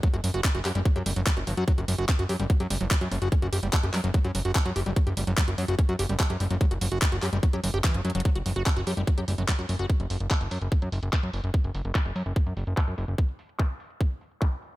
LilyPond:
<<
  \new Staff \with { instrumentName = "Acid bass" } { \clef bass \time 4/4 \tempo 4 = 146 fis16 fis'16 fis16 fis'16 cis'16 fis'16 g'16 g16 fis16 g'16 g16 fis16 fis16 fis'16 fis16 fis'16 | fis16 fis'16 fis16 fis'16 cis'16 fis'16 g'16 g16 fis16 g'16 g16 fis16 fis16 fis'16 fis16 fis'16 | cis'16 fis'16 g'16 g16 fis16 g'16 g16 fis16 fis16 fis'16 fis16 fis'16 cis'16 fis'16 g'16 g16 | fis16 g'16 g16 fis16 fis16 fis'16 fis16 fis'16 cis'16 fis'16 g'16 g16 fis16 g'16 g16 fis16 |
fis16 fis'16 fis16 fis'16 cis'16 fis'16 g'16 g16 fis16 g'16 fis16 g'16 e16 fis16 fis16 fis16 | fis16 fis'16 fis16 fis'16 cis'16 fis'16 g'16 g16 fis16 g'16 g16 fis16 fis16 fis'16 fis16 fis'16 | r1 | r1 |
r1 | }
  \new Staff \with { instrumentName = "Analog synth bass" } { \clef bass \time 4/4 r16 fis,,16 fis,,16 fis,,16 r16 fis,,16 fis,16 fis,,16 r16 fis,16 fis,,16 fis,,16 r16 fis,,16 g,,16 fis,16 | r16 fis,,16 fis,,16 fis,,16 r16 fis,,16 fis,16 fis,,16 r16 fis,16 fis,,16 fis,,16 r16 fis,16 fis,,16 fis,,16 | r16 fis,,16 fis,,16 fis,,16 r16 fis,,16 fis,16 fis,,16 r16 fis,16 fis,,16 fis,,16 r16 fis,16 fis,,16 fis,,16 | r16 fis,,16 fis,,16 fis,,16 r16 fis,,16 fis,16 fis,,16 r16 fis,16 fis,,16 fis,,16 r16 fis,16 fis,,16 fis,,16 |
r16 fis,,16 fis,,16 fis,,16 r16 fis,,16 fis,16 fis,,16 r16 fis,16 fis,,16 fis,,16 r16 fis,,16 fis,16 fis,,16 | r16 fis,,16 fis,,16 fis,,16 r16 fis,,16 fis,16 fis,,16 r16 fis,16 fis,,16 fis,,16 r16 fis,16 fis,,16 fis,,16 | r16 fis,,16 fis,,16 fis,,16 r16 fis,,16 fis,16 fis,,16 r16 fis,16 fis,,16 fis,,16 r16 fis,16 fis,,16 fis,,16 | r16 fis,,16 fis,,16 fis,,16 r16 fis,,16 fis,16 fis,,16 r16 fis,16 fis,,16 fis,,16 r16 fis,16 fis,,16 fis,,16 |
r1 | }
  \new DrumStaff \with { instrumentName = "Drums" } \drummode { \time 4/4 <hh bd>16 hh16 hho16 hh16 <hc hh bd>16 hh16 <hc hho>16 hh16 <hh bd>16 hh16 hho16 hh16 <hc hh bd>16 hh16 hho16 hh16 | <hh bd>16 hh16 hho16 hh16 <hc hh bd>16 hh16 hho16 hh16 <hh bd>16 hh16 hho16 hh16 <hc hh bd>16 hh16 hho16 hh16 | <hh bd>16 hh16 hho16 hh16 <hc hh bd>16 hh16 <hc hho>16 hh16 <hh bd>16 hh16 hho16 hh16 <hc hh bd>16 hh16 hho16 hh16 | <hh bd>16 hh16 hho16 hh16 <hc hh bd>16 hh16 hho16 hh16 <hh bd>16 hh16 hho16 hh16 <hc hh bd>16 hh16 hho16 hh16 |
<hh bd>16 hh16 hho16 hh16 <hc hh bd>16 hh16 <hc hho>16 hh16 <hh bd>16 hh16 hho16 hh16 <hc hh bd>16 hh16 hh32 hh32 hh32 hh32 | <hh bd>16 hh16 hho16 hh16 <hc hh bd>16 hh16 hho16 hh16 <hh bd>16 hh16 hho16 hh16 <hc hh bd>16 hh16 hho16 hh16 | <hh bd>16 hh16 hho16 hh16 <hc hh bd>16 hh16 hho16 hh16 <hh bd>16 hh16 hho16 hh16 <hc hh bd>16 hh16 hho16 hh16 | <hh bd>16 hh16 hho16 hh16 <hc hh bd>16 hh16 hho16 hh16 <hh bd>16 hh16 hho16 hh16 <hc hh bd>16 hh16 hho16 hh16 |
<hh bd>16 hh16 hho16 hh16 <hc bd>16 hh16 hho16 hh16 bd16 hh16 hho16 hh16 <hc bd>16 hh16 hho16 hh16 | }
>>